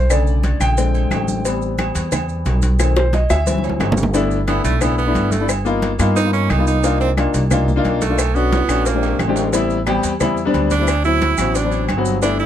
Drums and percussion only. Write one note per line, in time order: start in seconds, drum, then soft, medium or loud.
0.10 cowbell loud
0.10 low agogo loud
0.10 claves medium
0.10 maracas loud
0.27 high conga soft
0.27 maracas soft
0.43 cowbell medium
0.43 high conga loud
0.43 low agogo medium
0.43 maracas soft
0.60 cowbell medium
0.60 high conga soft
0.60 low agogo loud
0.60 claves medium
0.60 maracas medium
0.77 cowbell loud
0.77 high conga soft
0.77 maracas medium
0.94 high conga soft
0.94 low agogo medium
0.94 maracas soft
1.11 cowbell medium
1.11 high conga medium
1.11 low timbale medium
1.11 low agogo loud
1.11 claves medium
1.11 maracas soft
1.28 high conga medium
1.28 maracas medium
1.45 cowbell loud
1.45 high conga soft
1.45 low agogo medium
1.45 maracas loud
1.62 high conga soft
1.62 maracas soft
1.78 cowbell medium
1.78 high conga loud
1.78 low agogo loud
1.78 claves medium
1.78 maracas soft
1.95 cowbell medium
1.95 high conga soft
1.95 low agogo medium
1.95 maracas medium
2.12 cowbell loud
2.12 high conga soft
2.12 low conga medium
2.12 low agogo loud
2.12 claves medium
2.12 maracas medium
2.29 high conga soft
2.29 maracas soft
2.46 cowbell medium
2.46 high conga medium
2.46 low timbale medium
2.46 low agogo medium
2.46 maracas soft
2.62 cowbell medium
2.62 high conga medium
2.62 maracas medium
2.79 cowbell loud
2.79 high bongo medium
2.79 low agogo loud
2.79 claves medium
2.79 maracas loud
2.96 high bongo loud
2.96 high conga soft
2.96 maracas soft
3.13 cowbell medium
3.13 high bongo medium
3.13 high conga loud
3.13 low agogo medium
3.13 maracas soft
3.30 cowbell medium
3.30 high bongo loud
3.30 high conga soft
3.30 low agogo loud
3.30 claves medium
3.30 maracas medium
3.47 cowbell loud
3.47 low bongo medium
3.47 high conga medium
3.47 maracas medium
3.58 high conga medium
3.64 high timbale medium
3.64 low agogo medium
3.64 maracas soft
3.69 high conga loud
3.80 cowbell medium
3.80 low bongo medium
3.80 low timbale loud
3.80 low agogo loud
3.80 claves medium
3.80 maracas soft
3.92 low conga loud
3.97 low bongo medium
3.97 low timbale medium
3.97 maracas medium
4.03 low conga loud
4.14 cowbell loud
4.14 low agogo medium
4.14 maracas medium
4.31 high conga soft
4.31 maracas soft
4.48 cowbell medium
4.48 high conga medium
4.48 low agogo loud
4.48 claves medium
4.48 maracas soft
4.65 cowbell medium
4.65 high conga soft
4.65 low agogo medium
4.65 maracas medium
4.81 cowbell loud
4.81 high conga soft
4.81 low conga medium
4.81 low agogo loud
4.81 claves medium
4.81 maracas medium
4.98 high conga soft
4.98 maracas soft
5.15 cowbell medium
5.15 high conga medium
5.15 low agogo medium
5.15 maracas soft
5.32 cowbell medium
5.32 high conga medium
5.32 maracas medium
5.49 cowbell loud
5.49 high conga soft
5.49 low agogo loud
5.49 claves medium
5.49 maracas medium
5.65 high conga soft
5.65 maracas soft
5.82 cowbell medium
5.82 high conga loud
5.82 low agogo medium
5.82 maracas soft
5.99 cowbell medium
5.99 high conga soft
5.99 low agogo loud
5.99 claves medium
5.99 maracas medium
6.16 cowbell loud
6.16 high conga soft
6.16 maracas medium
6.33 high conga soft
6.33 low agogo medium
6.33 maracas soft
6.50 cowbell medium
6.50 high conga medium
6.50 low timbale medium
6.50 low agogo loud
6.50 claves medium
6.50 maracas soft
6.67 maracas medium
6.83 cowbell loud
6.83 low agogo medium
6.83 maracas loud
7.01 high conga soft
7.01 maracas soft
7.17 cowbell medium
7.17 high conga medium
7.17 low agogo loud
7.17 claves medium
7.17 maracas soft
7.34 cowbell medium
7.34 high conga soft
7.34 low agogo medium
7.34 maracas medium
7.51 cowbell loud
7.51 high conga soft
7.51 low conga medium
7.51 low agogo loud
7.51 claves medium
7.51 maracas medium
7.68 high conga soft
7.68 low conga medium
7.68 maracas soft
7.85 cowbell medium
7.85 high conga medium
7.85 low timbale medium
7.85 low agogo medium
7.85 maracas soft
8.01 cowbell medium
8.01 high conga medium
8.01 maracas medium
8.18 cowbell loud
8.18 low agogo loud
8.18 claves medium
8.18 maracas loud
8.36 high conga soft
8.36 maracas soft
8.52 cowbell medium
8.52 high conga loud
8.52 high timbale medium
8.52 low agogo medium
8.52 maracas soft
8.69 cowbell medium
8.69 high conga soft
8.69 low agogo loud
8.69 claves medium
8.69 maracas medium
8.86 cowbell loud
8.86 high conga soft
8.86 high timbale medium
8.86 maracas medium
9.03 high conga soft
9.03 low timbale medium
9.03 low agogo medium
9.03 maracas soft
9.19 cowbell medium
9.19 high conga medium
9.19 low timbale medium
9.19 low agogo loud
9.19 claves medium
9.19 maracas soft
9.36 low timbale loud
9.36 maracas medium
9.53 cowbell loud
9.53 low agogo medium
9.53 maracas loud
9.70 high conga soft
9.70 maracas soft
9.87 cowbell medium
9.87 high conga medium
9.87 low agogo loud
9.87 claves medium
9.87 maracas soft
10.03 cowbell medium
10.03 high conga soft
10.03 low agogo medium
10.03 maracas medium
10.20 cowbell loud
10.20 high conga soft
10.20 low conga medium
10.20 low agogo loud
10.20 claves medium
10.20 maracas medium
10.37 high conga soft
10.37 maracas soft
10.54 cowbell medium
10.54 high conga medium
10.54 low agogo medium
10.54 maracas soft
10.71 cowbell medium
10.71 high conga medium
10.71 maracas medium
10.87 cowbell loud
10.87 low agogo loud
10.87 claves medium
10.87 maracas medium
11.04 high conga soft
11.04 maracas soft
11.21 cowbell medium
11.21 high conga loud
11.21 low agogo medium
11.21 maracas soft
11.37 cowbell medium
11.37 high conga soft
11.37 low agogo loud
11.37 claves medium
11.37 maracas medium
11.55 cowbell loud
11.55 high conga soft
11.55 maracas medium
11.72 high conga soft
11.72 low agogo medium
11.72 maracas soft
11.88 cowbell medium
11.88 high conga medium
11.88 low agogo loud
11.88 claves medium
11.88 maracas soft
12.05 maracas medium
12.22 cowbell loud
12.22 high conga soft
12.22 low agogo medium
12.22 maracas medium
12.39 high conga soft
12.39 maracas soft